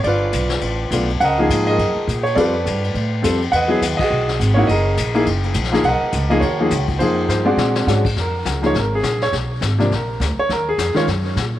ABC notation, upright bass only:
X:1
M:4/4
L:1/8
Q:"Swing" 1/4=207
K:Gb
V:1 name="Upright bass" clef=bass
=G,,,2 =B,,,2 =A,,,2 B,,,2 | D,,2 A,,2 G,, z B,,2 | F,,2 =G,,2 =A,,2 F,,2 | =E,,2 ^D,, z =B,,,2 ^G,,,2 |
G,,,2 B,,,2 G,,,2 B,,,2 | =B,,, z ^C,,2 ^D,,2 C,,2 | F,,2 =G,,2 B,,2 A,,2 | [K:Bbm] F,,2 D,,2 A,,,2 B,,,2 |
_C,,2 A,,,2 B,,,2 =D,, z | E,,2 F,, z G,,2 B,,2 |]